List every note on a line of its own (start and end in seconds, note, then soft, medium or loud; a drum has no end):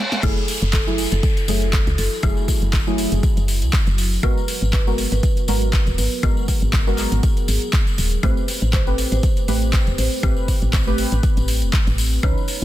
0.00 reverse cymbal medium
0.12 snare medium
0.23 0.33 F#1 loud
0.23 0.39 F#3 loud
0.23 8.19 F#3 medium
0.23 0.39 A3 medium
0.23 4.19 E4 medium
0.23 0.39 E4 medium
0.23 4.19 F#4 medium
0.23 0.39 G#4 loud
0.23 0.50 A4 loud
0.23 kick loud
0.23 closed hi-hat medium
0.23 crash loud
0.23 tambourine medium
0.23 downlifter medium
0.23 high woodblock medium
0.37 tambourine soft
0.48 open hi-hat loud
0.48 tambourine medium
0.62 1.06 F#1 loud
0.62 closed hi-hat soft
0.62 tambourine soft
0.73 0.94 A4 loud
0.73 kick loud
0.73 clap loud
0.73 closed hi-hat medium
0.73 tambourine medium
0.87 1.01 F#3 medium
0.87 1.01 A3 medium
0.87 1.01 E4 medium
0.87 1.01 G#4 medium
0.87 tambourine soft
0.98 open hi-hat loud
0.98 tambourine medium
1.12 1.20 F#1 medium
1.12 1.32 A4 medium
1.12 closed hi-hat medium
1.12 tambourine soft
1.23 kick loud
1.23 closed hi-hat medium
1.23 tambourine medium
1.37 closed hi-hat medium
1.37 tambourine soft
1.48 1.81 F#1 medium
1.48 1.64 F#3 medium
1.48 1.64 A3 medium
1.48 1.64 E4 medium
1.48 1.64 G#4 medium
1.48 1.75 A4 loud
1.48 open hi-hat loud
1.48 tambourine loud
1.62 closed hi-hat soft
1.62 tambourine soft
1.73 kick loud
1.73 clap loud
1.73 closed hi-hat medium
1.73 tambourine medium
1.87 1.95 C#2 loud
1.87 closed hi-hat soft
1.87 tambourine soft
1.98 2.08 F#1 medium
1.98 2.13 A4 medium
1.98 open hi-hat loud
1.98 tambourine medium
2.12 tambourine soft
2.23 2.33 F#1 loud
2.23 2.84 F#3 medium
2.23 2.84 A3 medium
2.23 2.84 E4 medium
2.23 2.84 G#4 loud
2.23 kick loud
2.23 closed hi-hat medium
2.23 tambourine medium
2.23 high woodblock medium
2.37 tambourine soft
2.48 kick medium
2.48 open hi-hat loud
2.48 tambourine loud
2.62 3.06 F#1 loud
2.62 closed hi-hat soft
2.62 tambourine soft
2.73 kick loud
2.73 clap loud
2.73 closed hi-hat medium
2.73 tambourine medium
2.87 4.20 F#3 medium
2.87 4.21 A3 medium
2.87 4.21 E4 medium
2.87 4.21 G#4 loud
2.87 tambourine soft
2.98 open hi-hat loud
2.98 tambourine medium
3.12 3.20 F#1 loud
3.12 closed hi-hat medium
3.12 tambourine soft
3.23 kick loud
3.23 closed hi-hat medium
3.23 tambourine medium
3.37 3.64 F#1 loud
3.37 closed hi-hat medium
3.37 tambourine soft
3.48 open hi-hat loud
3.48 tambourine medium
3.62 3.70 C#2 loud
3.62 closed hi-hat soft
3.62 tambourine soft
3.73 kick loud
3.73 clap loud
3.73 closed hi-hat medium
3.73 tambourine medium
3.86 4.19 F#1 loud
3.86 closed hi-hat soft
3.86 tambourine soft
3.98 open hi-hat loud
3.98 tambourine medium
4.12 tambourine soft
4.23 4.33 G#1 loud
4.23 4.39 G#3 loud
4.23 8.19 B3 medium
4.23 4.39 B3 medium
4.23 6.21 F#4 medium
4.23 4.39 F#4 medium
4.23 8.19 A#4 medium
4.23 4.39 A#4 loud
4.23 4.50 B4 loud
4.23 kick loud
4.23 closed hi-hat medium
4.23 tambourine medium
4.23 high woodblock medium
4.38 tambourine soft
4.48 open hi-hat loud
4.48 tambourine medium
4.62 5.06 G#1 medium
4.62 closed hi-hat soft
4.62 tambourine soft
4.73 4.94 B4 loud
4.73 kick loud
4.73 clap loud
4.73 closed hi-hat medium
4.73 tambourine medium
4.87 5.01 G#3 medium
4.87 5.01 B3 medium
4.87 5.01 F#4 medium
4.87 5.01 A#4 medium
4.87 tambourine soft
4.98 open hi-hat loud
4.98 tambourine medium
5.12 5.20 G#1 medium
5.12 5.32 B4 medium
5.12 closed hi-hat medium
5.12 tambourine soft
5.23 kick loud
5.23 closed hi-hat medium
5.23 tambourine medium
5.37 closed hi-hat medium
5.37 tambourine soft
5.48 5.81 G#1 medium
5.48 5.64 G#3 medium
5.48 5.64 B3 medium
5.48 5.64 F#4 medium
5.48 5.64 A#4 medium
5.48 5.75 B4 loud
5.48 open hi-hat loud
5.48 tambourine loud
5.61 closed hi-hat soft
5.61 tambourine soft
5.73 kick loud
5.73 clap loud
5.73 closed hi-hat medium
5.73 tambourine medium
5.86 5.95 D#1 loud
5.86 closed hi-hat soft
5.86 tambourine soft
5.98 6.08 G#1 medium
5.98 6.13 B4 medium
5.98 open hi-hat loud
5.98 tambourine loud
6.12 tambourine soft
6.23 6.33 G#1 loud
6.23 6.84 G#3 medium
6.23 6.84 B3 medium
6.23 6.84 F#4 medium
6.23 8.21 G#4 medium
6.23 6.84 A#4 loud
6.23 kick loud
6.23 closed hi-hat medium
6.23 tambourine medium
6.23 high woodblock medium
6.37 tambourine soft
6.48 kick medium
6.48 open hi-hat loud
6.48 tambourine loud
6.62 7.06 G#1 medium
6.62 closed hi-hat soft
6.62 tambourine soft
6.73 kick loud
6.73 clap loud
6.73 closed hi-hat medium
6.73 tambourine medium
6.87 8.20 G#3 medium
6.87 8.21 B3 medium
6.87 8.21 F#4 medium
6.87 8.21 A#4 loud
6.87 tambourine soft
6.98 clap soft
6.98 open hi-hat loud
6.98 tambourine medium
7.12 7.20 G#1 medium
7.12 closed hi-hat medium
7.12 tambourine soft
7.23 kick loud
7.23 closed hi-hat medium
7.23 tambourine medium
7.37 closed hi-hat medium
7.37 tambourine soft
7.48 7.58 G#1 medium
7.48 open hi-hat loud
7.48 tambourine loud
7.62 closed hi-hat soft
7.62 tambourine soft
7.73 kick loud
7.73 clap loud
7.73 closed hi-hat medium
7.73 tambourine medium
7.87 closed hi-hat soft
7.87 tambourine soft
7.98 8.17 D#1 medium
7.98 open hi-hat loud
7.98 tambourine loud
8.12 closed hi-hat soft
8.12 tambourine soft
8.23 8.33 A1 loud
8.23 8.39 A3 loud
8.23 12.19 A3 medium
8.23 8.39 C4 loud
8.23 12.19 C4 medium
8.23 12.19 G4 medium
8.23 8.39 G4 medium
8.23 12.19 B4 medium
8.23 8.39 B4 loud
8.23 8.50 C5 loud
8.23 kick loud
8.23 closed hi-hat medium
8.23 tambourine medium
8.23 high woodblock medium
8.37 tambourine soft
8.48 open hi-hat loud
8.48 tambourine medium
8.62 9.06 A1 medium
8.62 closed hi-hat soft
8.62 tambourine soft
8.73 8.94 C5 medium
8.73 kick loud
8.73 clap loud
8.73 closed hi-hat medium
8.73 tambourine medium
8.87 9.01 A3 medium
8.87 9.01 C4 medium
8.87 9.01 G4 medium
8.87 9.01 B4 loud
8.87 tambourine soft
8.98 open hi-hat loud
8.98 tambourine loud
9.12 9.20 A1 medium
9.12 9.32 C5 medium
9.12 closed hi-hat medium
9.12 tambourine soft
9.23 kick loud
9.23 closed hi-hat medium
9.23 tambourine soft
9.37 closed hi-hat medium
9.37 tambourine soft
9.48 9.81 A1 medium
9.48 9.64 A3 medium
9.48 9.64 C4 medium
9.48 9.64 G4 medium
9.48 9.64 B4 medium
9.48 9.75 C5 loud
9.48 open hi-hat loud
9.48 tambourine medium
9.62 closed hi-hat soft
9.62 tambourine soft
9.73 kick loud
9.73 clap loud
9.73 closed hi-hat medium
9.73 tambourine soft
9.87 9.95 E1 loud
9.87 closed hi-hat soft
9.87 tambourine soft
9.98 10.08 A1 medium
9.98 10.13 C5 medium
9.98 open hi-hat loud
9.98 tambourine loud
10.12 tambourine soft
10.23 10.33 A1 loud
10.23 10.84 A3 medium
10.23 10.84 C4 medium
10.23 10.84 G4 medium
10.23 10.84 B4 loud
10.23 kick loud
10.23 closed hi-hat medium
10.23 tambourine soft
10.23 high woodblock medium
10.37 tambourine soft
10.48 kick medium
10.48 open hi-hat loud
10.48 tambourine medium
10.62 11.06 A1 medium
10.62 closed hi-hat soft
10.62 tambourine soft
10.73 kick loud
10.73 clap loud
10.73 closed hi-hat medium
10.73 tambourine medium
10.87 12.20 A3 loud
10.87 12.21 C4 medium
10.87 12.21 G4 medium
10.87 12.21 B4 loud
10.87 tambourine soft
10.98 open hi-hat loud
10.98 tambourine medium
11.12 11.20 A1 medium
11.12 closed hi-hat medium
11.12 tambourine soft
11.23 kick loud
11.23 closed hi-hat medium
11.23 tambourine soft
11.37 11.64 A1 loud
11.37 closed hi-hat medium
11.37 tambourine soft
11.48 open hi-hat loud
11.48 tambourine medium
11.62 11.70 E1 loud
11.62 closed hi-hat soft
11.62 tambourine soft
11.73 kick loud
11.73 clap loud
11.73 closed hi-hat medium
11.73 tambourine soft
11.87 12.19 A1 loud
11.87 closed hi-hat soft
11.87 tambourine soft
11.98 open hi-hat loud
11.98 tambourine loud
12.13 tambourine soft
12.23 12.33 C#2 loud
12.23 12.39 E3 loud
12.23 12.65 E3 medium
12.23 12.65 B3 medium
12.23 12.39 C#4 medium
12.23 12.39 D#4 medium
12.23 12.65 D#4 medium
12.23 12.39 B4 loud
12.23 12.65 C#5 medium
12.23 12.50 C#5 loud
12.23 kick loud
12.23 closed hi-hat medium
12.23 tambourine medium
12.23 high woodblock medium
12.38 tambourine soft
12.48 open hi-hat loud
12.48 tambourine medium